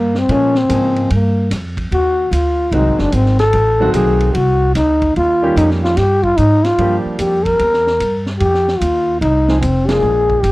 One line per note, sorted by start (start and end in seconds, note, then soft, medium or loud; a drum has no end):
0.00 0.28 G2 medium
0.00 0.20 A#3 medium
0.15 0.33 C4 medium
0.15 snare soft
0.29 0.68 A#2 medium
0.29 0.53 F3 medium
0.29 0.53 G#3 medium
0.29 0.53 A#3 medium
0.29 0.54 C#4 soft
0.29 0.59 C#4 loud
0.29 0.54 G#4 medium
0.29 ride medium
0.55 1.11 C4 medium
0.55 snare medium
0.69 1.09 G#2 medium
0.69 1.10 C#3 soft
0.69 1.10 F3 medium
0.69 1.10 G#3 medium
0.69 1.10 A#3 medium
0.69 1.11 G#4 medium
0.69 hi-hat pedal medium
0.69 ride medium
0.96 ride soft
1.10 1.50 G2 medium
1.10 1.49 A#3 medium
1.10 ride medium
1.51 1.90 F2 medium
1.51 snare soft
1.51 hi-hat pedal soft
1.51 ride medium
1.77 kick medium
1.77 ride soft
1.91 2.31 D#2 medium
1.91 2.34 F#4 medium
1.91 ride medium
2.31 2.71 D2 medium
2.31 2.75 F4 medium
2.31 hi-hat pedal soft
2.31 ride medium
2.72 2.88 C2 medium
2.72 3.34 D#3 medium
2.72 3.35 F#3 medium
2.72 3.35 G#3 medium
2.72 3.35 C4 medium
2.72 3.03 D#4 medium
2.72 3.35 F#4 medium
2.72 ride medium
2.86 2.99 G#1 medium
2.99 3.12 F#1 medium
2.99 3.16 D4 medium
2.99 snare soft
3.12 3.52 G#1 medium
3.12 3.39 C4 medium
3.12 hi-hat pedal medium
3.12 ride medium
3.26 snare soft
3.39 3.90 A4 loud
3.39 snare soft
3.39 ride soft
3.53 3.93 A1 medium
3.53 ride medium
3.80 4.32 D#3 medium
3.80 4.32 F#3 medium
3.80 4.32 A3 medium
3.80 4.32 C4 medium
3.80 4.33 F#4 medium
3.94 4.33 B1 medium
3.94 4.36 G#4 medium
3.94 hi-hat pedal medium
3.94 ride medium
4.20 ride soft
4.35 4.74 C2 medium
4.35 4.75 F#4 medium
4.35 ride medium
4.75 5.14 D2 medium
4.75 5.13 D#4 medium
4.75 snare soft
4.75 hi-hat pedal medium
4.75 ride medium
5.02 kick medium
5.02 ride soft
5.16 5.56 D#2 medium
5.16 5.54 F4 loud
5.16 ride medium
5.42 5.94 D#3 medium
5.42 5.94 G3 medium
5.42 5.95 A#3 medium
5.42 5.95 C#4 medium
5.42 5.95 G4 medium
5.56 5.96 F2 medium
5.56 5.70 D#4 medium
5.56 hi-hat pedal medium
5.56 ride medium
5.71 snare soft
5.83 5.99 F4 medium
5.83 snare soft
5.97 6.37 G2 medium
5.97 6.25 G4 medium
5.97 snare soft
5.97 ride medium
6.23 6.38 F4 medium
6.23 kick soft
6.37 6.77 G#2 medium
6.37 6.67 D#4 medium
6.37 hi-hat pedal medium
6.37 ride medium
6.64 6.97 F4 loud
6.64 snare soft
6.64 ride soft
6.78 7.03 G2 medium
6.78 7.60 F3 medium
6.78 7.60 G3 medium
6.78 7.60 A#3 medium
6.78 7.61 D4 medium
6.78 7.61 G4 medium
6.78 ride medium
7.05 muted upright bass stroke soft
7.19 7.58 F2 medium
7.19 7.46 G4 medium
7.19 hi-hat pedal medium
7.19 ride medium
7.45 8.26 A#4 loud
7.45 kick soft
7.45 ride soft
7.59 7.99 E2 medium
7.59 ride medium
7.73 snare soft
7.87 snare soft
8.00 8.40 G2 medium
8.00 hi-hat pedal medium
8.00 ride medium
8.26 snare soft
8.38 8.80 F2 medium
8.38 8.81 G4 loud
8.38 ride medium
8.54 snare soft
8.68 snare soft
8.80 9.21 D#2 medium
8.80 9.21 F4 medium
8.80 hi-hat pedal medium
8.80 ride medium
9.21 9.61 C2 medium
9.21 9.59 D#4 medium
9.21 ride medium
9.48 9.61 F3 medium
9.48 9.62 G#3 medium
9.48 9.62 C4 medium
9.48 9.62 D#4 medium
9.48 9.62 G#4 medium
9.48 snare medium
9.61 10.02 F1 medium
9.61 9.89 C4 medium
9.61 hi-hat pedal medium
9.61 ride medium
9.87 10.41 F3 medium
9.87 10.41 G#3 medium
9.87 10.42 A#3 medium
9.87 10.42 D4 medium
9.87 10.43 G#4 loud
9.87 10.42 G#4 medium
9.87 snare medium
9.87 ride medium
10.02 10.42 A#1 medium
10.30 kick medium
10.42 10.52 G1 medium
10.42 10.52 G4 medium
10.42 hi-hat pedal soft
10.42 ride medium